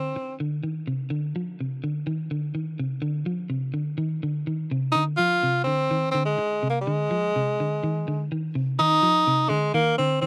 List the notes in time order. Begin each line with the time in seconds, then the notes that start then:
Already playing: D3 C4
0.16 muted clean electric guitar stroke
0.40 D3
0.63 D#3
0.87 C3
1.10 D3
1.36 F3
1.60 C3
1.84 D3
2.07 D#3
2.31 D3
2.55 D#3
2.79 C3
3.02 D3
3.26 F3
3.50 C3
3.74 D3
3.98 D#3
4.23 D3
4.47 D#3
4.71 C3
4.92 D3 D#4
5.17 F3 F4
5.43 C3
5.64 D3 C4
5.91 D#3
6.12 D3 C4
6.25 G#3
6.38 muted clean electric guitar stroke
6.63 C3
6.70 A#3
6.81 G#3
6.87 D3
7.11 F3
7.36 C3
7.60 D3
7.83 D#3
8.08 D3
8.32 D#3
8.55 C3
8.79 D#3 D#4
9.03 F3
9.27 C3
9.49 D3 G#3
9.74 D#3 A#3
9.98 D3 C4
10.21 D#3 C4